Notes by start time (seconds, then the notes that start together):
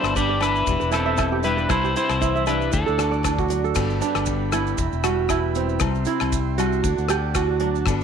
Already playing: G2 D3 B3 C4 D4 E4 G4 A4 C5 D5
0.03 G1, cross-stick, low agogo, maracas
0.15 G2 D4 G4 D5, kick, maracas
0.29 D5
0.40 F#2 D4 E4 B4, cross-stick, closed hi-hat, low agogo, maracas
0.56 maracas
0.66 E1 E2 E3 G3 G4, muted steel-string acoustic guitar stroke, kick, maracas
0.80 E1 B4, maracas
0.91 C4 E4 A4, cross-stick, closed hi-hat, low agogo, maracas
1.06 E5
1.16 E3 E4, kick, cross-stick, low agogo, maracas
1.32 G4
1.43 G3 D4 E4 B4, closed hi-hat, maracas
1.57 B4, maracas
1.69 C2 C3 G3 E4 C5, kick, cross-stick, low agogo, maracas
1.84 G4, maracas
1.95 C4 E4 C5, closed hi-hat, maracas
2.09 C2, cross-stick, low agogo, maracas
2.21 E3 E4, kick, maracas
2.36 E5, maracas
2.46 G3 D4 E4 B4, closed hi-hat, low agogo, maracas
2.61 maracas
2.71 D2 D3 D4 A4, kick, maracas
2.86 D2 A4, maracas
2.98 D4 F#4, cross-stick, closed hi-hat, low agogo, maracas
3.11 D5, maracas
3.23 E3 D4, kick, cross-stick, low agogo, maracas
3.38 F#4, kick, maracas
3.48 F#3 D4, closed hi-hat, maracas
3.64 A4, maracas
3.74 G1 G2 D3 B3 D4 G4 D5 G5 B5, kick, cross-stick, crash, low agogo, maracas
3.90 maracas
4.00 D4, closed hi-hat, maracas
4.15 G1, cross-stick, low agogo, maracas
4.26 D3, kick, maracas
4.52 B3 E4, cross-stick, closed hi-hat, low agogo, maracas
4.67 maracas
4.77 E1 E2 E5 B5, muted steel-string acoustic guitar stroke, kick, maracas
4.92 E1, maracas
5.04 G3 F#4, cross-stick, closed hi-hat, low agogo, maracas
5.28 E3 E4, kick, cross-stick, low agogo, maracas
5.55 G3 C4, closed hi-hat, maracas
5.69 maracas
5.80 C2 C3 G3 C6, kick, cross-stick, low agogo, maracas
5.95 maracas
6.05 C4 E4, closed hi-hat, maracas
6.20 C2, cross-stick, low agogo, maracas
6.33 kick, maracas
6.58 G3 F#4, closed hi-hat, low agogo, maracas
6.72 maracas
6.82 D2 D3 D4 D5 F#5 A5, kick, maracas
6.98 D2, maracas
7.08 F#4 G4, cross-stick, closed hi-hat, low agogo, maracas
7.35 E3 F#4, kick, cross-stick, low agogo, maracas
7.60 F#3 D4, closed hi-hat
7.75 maracas
7.86 G1 G2 D3 B3 D4 B5, kick, cross-stick, low agogo, maracas
8.01 maracas